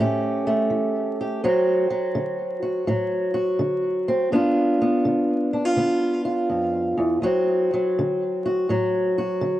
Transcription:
0.00 0.66 A2 medium
0.00 0.46 A3 medium
0.00 1.41 C#4 medium
0.00 1.20 G4 medium
0.47 1.41 A3 medium
0.70 1.38 E3 medium
1.21 1.41 G4 medium
1.43 2.11 D2 medium
1.43 1.89 F#3 medium
1.43 4.07 C4 medium
1.43 2.61 F#4 medium
1.90 2.86 F#3 medium
2.15 2.83 D3 medium
2.62 3.33 F#4 medium
2.87 3.55 A2 medium
2.87 4.32 F#3 medium
3.34 4.29 F#4 medium
3.59 4.27 D3 medium
4.08 4.30 C4 medium
4.32 5.00 G2 medium
4.32 4.80 B3 medium
4.32 5.53 D4 medium
4.32 5.53 F4 medium
4.81 5.76 B3 medium
5.05 5.73 D3 medium
5.53 5.65 D4 medium
5.65 6.24 F4 medium
5.76 6.45 D3 medium
5.76 7.20 B3 medium
6.25 7.20 F4 medium
6.50 6.97 F2 medium
6.97 7.22 E2 medium
7.22 7.90 D2 medium
7.22 7.73 F#3 medium
7.22 9.60 C4 medium
7.22 8.45 F#4 medium
7.74 8.70 F#3 medium
7.99 8.65 D3 medium
8.45 9.17 F#4 medium
8.69 9.36 A2 medium
8.69 9.60 F#3 medium
9.18 9.60 F#4 medium
9.41 9.60 D3 medium

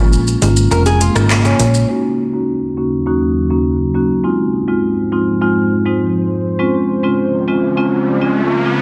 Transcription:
0.00 0.36 A#1 loud
0.00 1.87 C#3 medium
0.00 0.18 G#3 medium
0.00 1.87 G#3 medium
0.00 0.18 A#3 medium
0.00 1.87 A#3 medium
0.00 0.18 C#4 medium
0.00 0.18 F4 medium
0.13 shaker medium
0.27 shaker medium
0.42 0.67 G#1 loud
0.42 0.62 G#3 medium
0.42 0.62 A#3 medium
0.42 0.62 C#4 medium
0.42 0.63 F4 medium
0.42 closed hi-hat medium
0.42 high bongo medium
0.42 shaker medium
0.57 shaker medium
0.71 1.09 F1 loud
0.71 0.92 G#3 medium
0.71 0.92 A#3 medium
0.71 0.92 C#4 medium
0.71 0.92 F4 loud
0.71 0.85 A#4 medium
0.71 high bongo medium
0.71 shaker medium
0.86 1.00 G#4 medium
0.86 high bongo medium
0.86 shaker soft
1.01 1.15 F4 medium
1.01 closed hi-hat medium
1.01 shaker medium
1.15 1.54 G#1 medium
1.15 1.36 G#3 medium
1.15 1.36 A#3 medium
1.15 1.36 C#4 medium
1.15 1.43 D#4 medium
1.15 1.36 F4 medium
1.15 cross-stick loud
1.15 shaker medium
1.30 cross-stick medium
1.30 clap medium
1.30 high bongo medium
1.30 shaker medium
1.45 1.87 C#4 medium
1.45 high bongo medium
1.45 shaker soft
1.59 1.85 A#1 medium
1.59 closed hi-hat medium
1.59 low bongo medium
1.59 shaker medium
1.74 shaker medium
1.89 4.22 D#2 medium
1.89 4.22 C#3 medium
1.89 4.22 F#3 medium
1.89 2.09 A#3 medium
1.89 2.09 C#4 medium
1.89 2.10 D#4 medium
1.89 2.10 F#4 medium
2.33 2.53 A#3 medium
2.33 2.54 C#4 medium
2.33 2.54 D#4 medium
2.33 2.54 F#4 medium
2.77 2.98 A#3 medium
2.77 2.98 C#4 medium
2.77 2.98 D#4 medium
2.77 2.98 F#4 medium
3.06 3.27 A#3 medium
3.06 3.27 C#4 medium
3.06 3.27 D#4 medium
3.06 3.27 F#4 medium
3.50 3.91 A#3 medium
3.50 3.91 C#4 medium
3.50 3.91 D#4 medium
3.50 3.91 F#4 medium
3.95 4.22 A#3 medium
3.95 4.22 C#4 medium
3.95 4.22 D#4 medium
3.95 4.22 F#4 medium
4.24 6.57 G#2 medium
4.24 6.57 F3 medium
4.24 4.44 G#3 medium
4.24 4.44 C4 medium
4.24 4.45 D#4 medium
4.24 4.45 F4 medium
4.24 8.82 C5 medium
4.68 4.89 G#3 medium
4.68 4.89 C4 medium
4.68 4.89 D#4 medium
4.68 4.89 F4 medium
5.12 5.33 G#3 medium
5.12 5.33 C4 medium
5.12 5.33 D#4 medium
5.12 5.33 F4 medium
5.41 5.62 G#3 medium
5.41 5.62 C4 medium
5.41 5.62 D#4 medium
5.41 5.62 F4 loud
5.86 6.06 G#3 medium
5.86 6.06 C4 medium
5.86 6.06 D#4 medium
5.86 6.07 F4 medium
6.59 8.82 C#3 medium
6.59 6.80 G#3 medium
6.59 6.80 C4 medium
6.59 6.80 C#4 medium
6.59 8.82 F4 medium
6.59 6.80 F4 medium
6.59 riser medium
7.03 7.24 G#3 medium
7.03 7.24 C4 medium
7.03 7.24 C#4 medium
7.03 7.24 F4 medium
7.48 7.68 G#3 medium
7.48 7.68 C4 medium
7.48 7.68 C#4 medium
7.48 7.68 F4 medium
7.77 7.98 G#3 medium
7.77 7.98 C4 medium
7.77 7.98 C#4 medium
7.77 7.98 F4 loud
8.21 8.62 G#3 medium
8.21 8.62 C4 medium
8.21 8.62 C#4 medium
8.21 8.62 F4 medium
8.65 8.82 G#3 medium
8.65 8.82 C4 medium
8.65 8.82 C#4 medium
8.65 8.82 F4 medium

